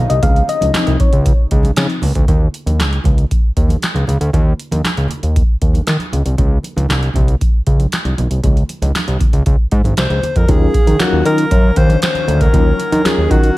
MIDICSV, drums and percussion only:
0, 0, Header, 1, 2, 480
1, 0, Start_track
1, 0, Tempo, 512821
1, 215, Time_signature, 4, 2, 24, 8
1, 12709, End_track
2, 0, Start_track
2, 0, Title_t, "Drums"
2, 93, Note_on_c, 9, 42, 56
2, 187, Note_off_c, 9, 42, 0
2, 212, Note_on_c, 9, 42, 88
2, 212, Note_on_c, 9, 62, 37
2, 212, Note_on_c, 9, 64, 86
2, 214, Note_on_c, 9, 36, 114
2, 306, Note_off_c, 9, 42, 0
2, 306, Note_off_c, 9, 62, 0
2, 306, Note_off_c, 9, 64, 0
2, 307, Note_off_c, 9, 36, 0
2, 339, Note_on_c, 9, 42, 35
2, 433, Note_off_c, 9, 42, 0
2, 449, Note_on_c, 9, 62, 36
2, 458, Note_on_c, 9, 42, 73
2, 543, Note_off_c, 9, 62, 0
2, 551, Note_off_c, 9, 42, 0
2, 571, Note_on_c, 9, 63, 73
2, 580, Note_on_c, 9, 42, 59
2, 665, Note_off_c, 9, 63, 0
2, 673, Note_off_c, 9, 42, 0
2, 687, Note_on_c, 9, 63, 77
2, 694, Note_on_c, 9, 42, 73
2, 697, Note_on_c, 9, 38, 105
2, 702, Note_on_c, 9, 39, 88
2, 780, Note_off_c, 9, 63, 0
2, 787, Note_off_c, 9, 42, 0
2, 791, Note_off_c, 9, 38, 0
2, 796, Note_off_c, 9, 39, 0
2, 813, Note_on_c, 9, 42, 40
2, 907, Note_off_c, 9, 42, 0
2, 935, Note_on_c, 9, 42, 71
2, 936, Note_on_c, 9, 36, 98
2, 1028, Note_off_c, 9, 42, 0
2, 1029, Note_off_c, 9, 36, 0
2, 1054, Note_on_c, 9, 42, 49
2, 1148, Note_off_c, 9, 42, 0
2, 1167, Note_on_c, 9, 62, 28
2, 1177, Note_on_c, 9, 42, 85
2, 1178, Note_on_c, 9, 36, 107
2, 1261, Note_off_c, 9, 62, 0
2, 1270, Note_off_c, 9, 42, 0
2, 1272, Note_off_c, 9, 36, 0
2, 1413, Note_on_c, 9, 42, 76
2, 1414, Note_on_c, 9, 62, 32
2, 1417, Note_on_c, 9, 36, 82
2, 1507, Note_off_c, 9, 42, 0
2, 1508, Note_off_c, 9, 62, 0
2, 1511, Note_off_c, 9, 36, 0
2, 1527, Note_on_c, 9, 63, 68
2, 1542, Note_on_c, 9, 42, 47
2, 1620, Note_off_c, 9, 63, 0
2, 1635, Note_off_c, 9, 42, 0
2, 1649, Note_on_c, 9, 62, 29
2, 1652, Note_on_c, 9, 42, 111
2, 1662, Note_on_c, 9, 38, 113
2, 1667, Note_on_c, 9, 39, 94
2, 1742, Note_off_c, 9, 62, 0
2, 1746, Note_off_c, 9, 42, 0
2, 1756, Note_off_c, 9, 38, 0
2, 1761, Note_off_c, 9, 39, 0
2, 1775, Note_on_c, 9, 42, 37
2, 1868, Note_off_c, 9, 42, 0
2, 1889, Note_on_c, 9, 62, 34
2, 1889, Note_on_c, 9, 64, 73
2, 1897, Note_on_c, 9, 46, 75
2, 1983, Note_off_c, 9, 62, 0
2, 1983, Note_off_c, 9, 64, 0
2, 1991, Note_off_c, 9, 46, 0
2, 2016, Note_on_c, 9, 42, 55
2, 2017, Note_on_c, 9, 36, 89
2, 2110, Note_off_c, 9, 36, 0
2, 2110, Note_off_c, 9, 42, 0
2, 2134, Note_on_c, 9, 64, 73
2, 2136, Note_on_c, 9, 36, 95
2, 2136, Note_on_c, 9, 42, 75
2, 2228, Note_off_c, 9, 64, 0
2, 2230, Note_off_c, 9, 36, 0
2, 2230, Note_off_c, 9, 42, 0
2, 2378, Note_on_c, 9, 42, 65
2, 2472, Note_off_c, 9, 42, 0
2, 2494, Note_on_c, 9, 63, 67
2, 2499, Note_on_c, 9, 42, 56
2, 2588, Note_off_c, 9, 63, 0
2, 2593, Note_off_c, 9, 42, 0
2, 2613, Note_on_c, 9, 63, 65
2, 2619, Note_on_c, 9, 42, 70
2, 2622, Note_on_c, 9, 38, 107
2, 2627, Note_on_c, 9, 39, 87
2, 2707, Note_off_c, 9, 63, 0
2, 2712, Note_off_c, 9, 42, 0
2, 2716, Note_off_c, 9, 38, 0
2, 2721, Note_off_c, 9, 39, 0
2, 2739, Note_on_c, 9, 42, 35
2, 2833, Note_off_c, 9, 42, 0
2, 2845, Note_on_c, 9, 62, 32
2, 2845, Note_on_c, 9, 64, 68
2, 2857, Note_on_c, 9, 36, 95
2, 2857, Note_on_c, 9, 42, 65
2, 2939, Note_off_c, 9, 62, 0
2, 2939, Note_off_c, 9, 64, 0
2, 2951, Note_off_c, 9, 36, 0
2, 2951, Note_off_c, 9, 42, 0
2, 2977, Note_on_c, 9, 42, 45
2, 3070, Note_off_c, 9, 42, 0
2, 3095, Note_on_c, 9, 62, 26
2, 3100, Note_on_c, 9, 36, 104
2, 3100, Note_on_c, 9, 42, 74
2, 3188, Note_off_c, 9, 62, 0
2, 3194, Note_off_c, 9, 36, 0
2, 3194, Note_off_c, 9, 42, 0
2, 3338, Note_on_c, 9, 62, 30
2, 3339, Note_on_c, 9, 36, 72
2, 3339, Note_on_c, 9, 42, 68
2, 3432, Note_off_c, 9, 36, 0
2, 3432, Note_off_c, 9, 42, 0
2, 3432, Note_off_c, 9, 62, 0
2, 3450, Note_on_c, 9, 63, 65
2, 3465, Note_on_c, 9, 42, 45
2, 3544, Note_off_c, 9, 63, 0
2, 3559, Note_off_c, 9, 42, 0
2, 3575, Note_on_c, 9, 62, 28
2, 3580, Note_on_c, 9, 42, 92
2, 3590, Note_on_c, 9, 38, 104
2, 3595, Note_on_c, 9, 39, 88
2, 3669, Note_off_c, 9, 62, 0
2, 3673, Note_off_c, 9, 42, 0
2, 3683, Note_off_c, 9, 38, 0
2, 3688, Note_off_c, 9, 39, 0
2, 3688, Note_on_c, 9, 63, 52
2, 3704, Note_on_c, 9, 42, 33
2, 3782, Note_off_c, 9, 63, 0
2, 3797, Note_off_c, 9, 42, 0
2, 3811, Note_on_c, 9, 64, 66
2, 3827, Note_on_c, 9, 42, 64
2, 3905, Note_off_c, 9, 64, 0
2, 3920, Note_off_c, 9, 42, 0
2, 3941, Note_on_c, 9, 42, 53
2, 4034, Note_off_c, 9, 42, 0
2, 4055, Note_on_c, 9, 64, 72
2, 4057, Note_on_c, 9, 36, 97
2, 4062, Note_on_c, 9, 42, 83
2, 4148, Note_off_c, 9, 64, 0
2, 4151, Note_off_c, 9, 36, 0
2, 4155, Note_off_c, 9, 42, 0
2, 4301, Note_on_c, 9, 42, 58
2, 4395, Note_off_c, 9, 42, 0
2, 4412, Note_on_c, 9, 63, 71
2, 4419, Note_on_c, 9, 42, 55
2, 4506, Note_off_c, 9, 63, 0
2, 4513, Note_off_c, 9, 42, 0
2, 4529, Note_on_c, 9, 63, 64
2, 4537, Note_on_c, 9, 42, 65
2, 4540, Note_on_c, 9, 38, 94
2, 4545, Note_on_c, 9, 39, 83
2, 4622, Note_off_c, 9, 63, 0
2, 4630, Note_off_c, 9, 42, 0
2, 4634, Note_off_c, 9, 38, 0
2, 4639, Note_off_c, 9, 39, 0
2, 4654, Note_on_c, 9, 42, 35
2, 4748, Note_off_c, 9, 42, 0
2, 4759, Note_on_c, 9, 64, 65
2, 4779, Note_on_c, 9, 42, 67
2, 4852, Note_off_c, 9, 64, 0
2, 4873, Note_off_c, 9, 42, 0
2, 4896, Note_on_c, 9, 42, 44
2, 4989, Note_off_c, 9, 42, 0
2, 5019, Note_on_c, 9, 36, 114
2, 5019, Note_on_c, 9, 42, 75
2, 5112, Note_off_c, 9, 42, 0
2, 5113, Note_off_c, 9, 36, 0
2, 5256, Note_on_c, 9, 42, 70
2, 5257, Note_on_c, 9, 36, 80
2, 5350, Note_off_c, 9, 42, 0
2, 5351, Note_off_c, 9, 36, 0
2, 5369, Note_on_c, 9, 63, 60
2, 5381, Note_on_c, 9, 42, 42
2, 5462, Note_off_c, 9, 63, 0
2, 5475, Note_off_c, 9, 42, 0
2, 5492, Note_on_c, 9, 42, 96
2, 5502, Note_on_c, 9, 38, 104
2, 5507, Note_on_c, 9, 39, 90
2, 5586, Note_off_c, 9, 42, 0
2, 5596, Note_off_c, 9, 38, 0
2, 5601, Note_off_c, 9, 39, 0
2, 5606, Note_on_c, 9, 63, 50
2, 5616, Note_on_c, 9, 42, 33
2, 5699, Note_off_c, 9, 63, 0
2, 5710, Note_off_c, 9, 42, 0
2, 5731, Note_on_c, 9, 64, 61
2, 5739, Note_on_c, 9, 42, 58
2, 5824, Note_off_c, 9, 64, 0
2, 5833, Note_off_c, 9, 42, 0
2, 5856, Note_on_c, 9, 42, 49
2, 5949, Note_off_c, 9, 42, 0
2, 5969, Note_on_c, 9, 64, 72
2, 5975, Note_on_c, 9, 36, 90
2, 5975, Note_on_c, 9, 42, 77
2, 6063, Note_off_c, 9, 64, 0
2, 6069, Note_off_c, 9, 36, 0
2, 6069, Note_off_c, 9, 42, 0
2, 6209, Note_on_c, 9, 62, 33
2, 6218, Note_on_c, 9, 42, 61
2, 6302, Note_off_c, 9, 62, 0
2, 6312, Note_off_c, 9, 42, 0
2, 6332, Note_on_c, 9, 63, 74
2, 6343, Note_on_c, 9, 42, 49
2, 6425, Note_off_c, 9, 63, 0
2, 6437, Note_off_c, 9, 42, 0
2, 6448, Note_on_c, 9, 62, 28
2, 6448, Note_on_c, 9, 63, 67
2, 6459, Note_on_c, 9, 42, 64
2, 6463, Note_on_c, 9, 38, 102
2, 6467, Note_on_c, 9, 39, 86
2, 6541, Note_off_c, 9, 62, 0
2, 6541, Note_off_c, 9, 63, 0
2, 6552, Note_off_c, 9, 42, 0
2, 6556, Note_off_c, 9, 38, 0
2, 6561, Note_off_c, 9, 39, 0
2, 6577, Note_on_c, 9, 42, 33
2, 6670, Note_off_c, 9, 42, 0
2, 6680, Note_on_c, 9, 62, 30
2, 6680, Note_on_c, 9, 64, 65
2, 6697, Note_on_c, 9, 36, 92
2, 6699, Note_on_c, 9, 42, 68
2, 6774, Note_off_c, 9, 62, 0
2, 6774, Note_off_c, 9, 64, 0
2, 6790, Note_off_c, 9, 36, 0
2, 6793, Note_off_c, 9, 42, 0
2, 6816, Note_on_c, 9, 42, 47
2, 6909, Note_off_c, 9, 42, 0
2, 6933, Note_on_c, 9, 62, 26
2, 6938, Note_on_c, 9, 42, 73
2, 6939, Note_on_c, 9, 36, 100
2, 7026, Note_off_c, 9, 62, 0
2, 7032, Note_off_c, 9, 42, 0
2, 7033, Note_off_c, 9, 36, 0
2, 7175, Note_on_c, 9, 42, 65
2, 7177, Note_on_c, 9, 36, 80
2, 7181, Note_on_c, 9, 62, 30
2, 7269, Note_off_c, 9, 42, 0
2, 7271, Note_off_c, 9, 36, 0
2, 7274, Note_off_c, 9, 62, 0
2, 7296, Note_on_c, 9, 63, 62
2, 7298, Note_on_c, 9, 42, 44
2, 7389, Note_off_c, 9, 63, 0
2, 7392, Note_off_c, 9, 42, 0
2, 7415, Note_on_c, 9, 42, 99
2, 7420, Note_on_c, 9, 62, 28
2, 7425, Note_on_c, 9, 38, 100
2, 7430, Note_on_c, 9, 39, 81
2, 7509, Note_off_c, 9, 42, 0
2, 7514, Note_off_c, 9, 62, 0
2, 7519, Note_off_c, 9, 38, 0
2, 7524, Note_off_c, 9, 39, 0
2, 7536, Note_on_c, 9, 42, 33
2, 7537, Note_on_c, 9, 63, 53
2, 7630, Note_off_c, 9, 42, 0
2, 7630, Note_off_c, 9, 63, 0
2, 7657, Note_on_c, 9, 64, 67
2, 7659, Note_on_c, 9, 42, 60
2, 7751, Note_off_c, 9, 64, 0
2, 7753, Note_off_c, 9, 42, 0
2, 7776, Note_on_c, 9, 42, 52
2, 7870, Note_off_c, 9, 42, 0
2, 7896, Note_on_c, 9, 36, 93
2, 7896, Note_on_c, 9, 42, 76
2, 7900, Note_on_c, 9, 62, 33
2, 7900, Note_on_c, 9, 64, 70
2, 7989, Note_off_c, 9, 36, 0
2, 7990, Note_off_c, 9, 42, 0
2, 7994, Note_off_c, 9, 62, 0
2, 7994, Note_off_c, 9, 64, 0
2, 8020, Note_on_c, 9, 42, 33
2, 8114, Note_off_c, 9, 42, 0
2, 8134, Note_on_c, 9, 62, 31
2, 8136, Note_on_c, 9, 42, 65
2, 8228, Note_off_c, 9, 62, 0
2, 8229, Note_off_c, 9, 42, 0
2, 8253, Note_on_c, 9, 63, 68
2, 8259, Note_on_c, 9, 42, 55
2, 8347, Note_off_c, 9, 63, 0
2, 8352, Note_off_c, 9, 42, 0
2, 8376, Note_on_c, 9, 63, 62
2, 8378, Note_on_c, 9, 42, 64
2, 8382, Note_on_c, 9, 38, 103
2, 8387, Note_on_c, 9, 39, 79
2, 8470, Note_off_c, 9, 63, 0
2, 8472, Note_off_c, 9, 42, 0
2, 8475, Note_off_c, 9, 38, 0
2, 8480, Note_off_c, 9, 39, 0
2, 8496, Note_on_c, 9, 42, 34
2, 8590, Note_off_c, 9, 42, 0
2, 8605, Note_on_c, 9, 64, 62
2, 8615, Note_on_c, 9, 36, 96
2, 8616, Note_on_c, 9, 42, 67
2, 8698, Note_off_c, 9, 64, 0
2, 8709, Note_off_c, 9, 36, 0
2, 8710, Note_off_c, 9, 42, 0
2, 8735, Note_on_c, 9, 42, 44
2, 8828, Note_off_c, 9, 42, 0
2, 8855, Note_on_c, 9, 42, 69
2, 8855, Note_on_c, 9, 62, 28
2, 8858, Note_on_c, 9, 36, 104
2, 8948, Note_off_c, 9, 42, 0
2, 8949, Note_off_c, 9, 62, 0
2, 8952, Note_off_c, 9, 36, 0
2, 9093, Note_on_c, 9, 42, 65
2, 9096, Note_on_c, 9, 36, 80
2, 9186, Note_off_c, 9, 42, 0
2, 9189, Note_off_c, 9, 36, 0
2, 9211, Note_on_c, 9, 63, 64
2, 9221, Note_on_c, 9, 42, 44
2, 9305, Note_off_c, 9, 63, 0
2, 9314, Note_off_c, 9, 42, 0
2, 9333, Note_on_c, 9, 42, 100
2, 9336, Note_on_c, 9, 62, 27
2, 9343, Note_on_c, 9, 38, 115
2, 9348, Note_on_c, 9, 39, 85
2, 9427, Note_off_c, 9, 42, 0
2, 9430, Note_off_c, 9, 62, 0
2, 9437, Note_off_c, 9, 38, 0
2, 9442, Note_off_c, 9, 39, 0
2, 9452, Note_on_c, 9, 63, 48
2, 9457, Note_on_c, 9, 42, 35
2, 9545, Note_off_c, 9, 63, 0
2, 9550, Note_off_c, 9, 42, 0
2, 9574, Note_on_c, 9, 62, 29
2, 9574, Note_on_c, 9, 64, 67
2, 9580, Note_on_c, 9, 42, 62
2, 9667, Note_off_c, 9, 62, 0
2, 9667, Note_off_c, 9, 64, 0
2, 9673, Note_off_c, 9, 42, 0
2, 9694, Note_on_c, 9, 42, 51
2, 9695, Note_on_c, 9, 36, 77
2, 9788, Note_off_c, 9, 42, 0
2, 9789, Note_off_c, 9, 36, 0
2, 9814, Note_on_c, 9, 36, 110
2, 9814, Note_on_c, 9, 42, 88
2, 9817, Note_on_c, 9, 64, 78
2, 9908, Note_off_c, 9, 36, 0
2, 9908, Note_off_c, 9, 42, 0
2, 9911, Note_off_c, 9, 64, 0
2, 10054, Note_on_c, 9, 36, 101
2, 10054, Note_on_c, 9, 62, 36
2, 10056, Note_on_c, 9, 42, 74
2, 10147, Note_off_c, 9, 62, 0
2, 10148, Note_off_c, 9, 36, 0
2, 10150, Note_off_c, 9, 42, 0
2, 10176, Note_on_c, 9, 63, 74
2, 10177, Note_on_c, 9, 42, 59
2, 10270, Note_off_c, 9, 63, 0
2, 10271, Note_off_c, 9, 42, 0
2, 10292, Note_on_c, 9, 42, 78
2, 10293, Note_on_c, 9, 62, 35
2, 10293, Note_on_c, 9, 63, 76
2, 10295, Note_on_c, 9, 38, 111
2, 10300, Note_on_c, 9, 39, 97
2, 10385, Note_off_c, 9, 42, 0
2, 10386, Note_off_c, 9, 62, 0
2, 10386, Note_off_c, 9, 63, 0
2, 10389, Note_off_c, 9, 38, 0
2, 10394, Note_off_c, 9, 39, 0
2, 10522, Note_on_c, 9, 62, 35
2, 10534, Note_on_c, 9, 42, 72
2, 10615, Note_off_c, 9, 62, 0
2, 10628, Note_off_c, 9, 42, 0
2, 10652, Note_on_c, 9, 42, 51
2, 10746, Note_off_c, 9, 42, 0
2, 10769, Note_on_c, 9, 62, 30
2, 10775, Note_on_c, 9, 42, 79
2, 10776, Note_on_c, 9, 36, 117
2, 10863, Note_off_c, 9, 62, 0
2, 10869, Note_off_c, 9, 42, 0
2, 10870, Note_off_c, 9, 36, 0
2, 11010, Note_on_c, 9, 42, 82
2, 11015, Note_on_c, 9, 36, 87
2, 11015, Note_on_c, 9, 62, 32
2, 11104, Note_off_c, 9, 42, 0
2, 11108, Note_off_c, 9, 36, 0
2, 11108, Note_off_c, 9, 62, 0
2, 11129, Note_on_c, 9, 63, 73
2, 11137, Note_on_c, 9, 42, 49
2, 11222, Note_off_c, 9, 63, 0
2, 11230, Note_off_c, 9, 42, 0
2, 11251, Note_on_c, 9, 42, 108
2, 11261, Note_on_c, 9, 38, 127
2, 11266, Note_on_c, 9, 39, 96
2, 11344, Note_off_c, 9, 42, 0
2, 11354, Note_off_c, 9, 38, 0
2, 11359, Note_off_c, 9, 39, 0
2, 11368, Note_on_c, 9, 63, 58
2, 11374, Note_on_c, 9, 42, 38
2, 11461, Note_off_c, 9, 63, 0
2, 11467, Note_off_c, 9, 42, 0
2, 11488, Note_on_c, 9, 64, 77
2, 11498, Note_on_c, 9, 42, 72
2, 11582, Note_off_c, 9, 64, 0
2, 11592, Note_off_c, 9, 42, 0
2, 11614, Note_on_c, 9, 42, 57
2, 11615, Note_on_c, 9, 36, 86
2, 11707, Note_off_c, 9, 42, 0
2, 11708, Note_off_c, 9, 36, 0
2, 11734, Note_on_c, 9, 36, 116
2, 11734, Note_on_c, 9, 64, 82
2, 11736, Note_on_c, 9, 42, 94
2, 11828, Note_off_c, 9, 36, 0
2, 11828, Note_off_c, 9, 64, 0
2, 11830, Note_off_c, 9, 42, 0
2, 11971, Note_on_c, 9, 62, 33
2, 11977, Note_on_c, 9, 42, 72
2, 12065, Note_off_c, 9, 62, 0
2, 12070, Note_off_c, 9, 42, 0
2, 12095, Note_on_c, 9, 63, 78
2, 12097, Note_on_c, 9, 42, 60
2, 12188, Note_off_c, 9, 63, 0
2, 12191, Note_off_c, 9, 42, 0
2, 12214, Note_on_c, 9, 63, 75
2, 12217, Note_on_c, 9, 42, 79
2, 12221, Note_on_c, 9, 38, 105
2, 12226, Note_on_c, 9, 39, 90
2, 12308, Note_off_c, 9, 63, 0
2, 12311, Note_off_c, 9, 42, 0
2, 12314, Note_off_c, 9, 38, 0
2, 12319, Note_off_c, 9, 39, 0
2, 12442, Note_on_c, 9, 62, 34
2, 12455, Note_on_c, 9, 36, 95
2, 12457, Note_on_c, 9, 42, 66
2, 12536, Note_off_c, 9, 62, 0
2, 12548, Note_off_c, 9, 36, 0
2, 12551, Note_off_c, 9, 42, 0
2, 12575, Note_on_c, 9, 42, 50
2, 12669, Note_off_c, 9, 42, 0
2, 12709, End_track
0, 0, End_of_file